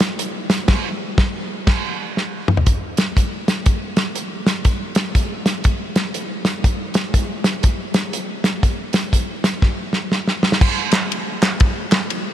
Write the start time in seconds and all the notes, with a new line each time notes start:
0.00 snare, closed hi-hat
0.19 closed hi-hat
0.50 snare, closed hi-hat
0.68 kick, snare, crash
1.18 kick, snare
1.67 kick, snare, crash
2.17 snare
2.48 mid tom
2.57 floor tom
2.66 kick, closed hi-hat
2.97 snare, closed hi-hat
3.17 kick, closed hi-hat
3.48 snare, closed hi-hat
3.66 kick, closed hi-hat
3.97 snare, closed hi-hat
4.15 closed hi-hat
4.47 snare, closed hi-hat
4.65 kick, closed hi-hat
4.95 snare, closed hi-hat
5.15 kick, closed hi-hat
5.46 snare, closed hi-hat
5.64 kick, closed hi-hat
5.96 snare, closed hi-hat
6.14 closed hi-hat
6.45 snare, closed hi-hat
6.64 kick, closed hi-hat
6.94 snare, closed hi-hat
7.14 kick, closed hi-hat
7.44 snare, closed hi-hat
7.63 kick, closed hi-hat
7.94 snare, closed hi-hat
8.13 closed hi-hat
8.44 snare, closed hi-hat
8.63 kick, closed hi-hat
8.93 snare, closed hi-hat
9.13 kick, closed hi-hat
9.44 snare, closed hi-hat
9.62 kick, snare
9.93 snare
10.12 snare
10.28 snare
10.43 snare
10.52 snare
10.61 kick, crash
10.92 snare, clap, ride
11.12 ride
11.43 snare, clap, ride
11.60 kick, ride
11.92 snare, clap, ride
12.10 ride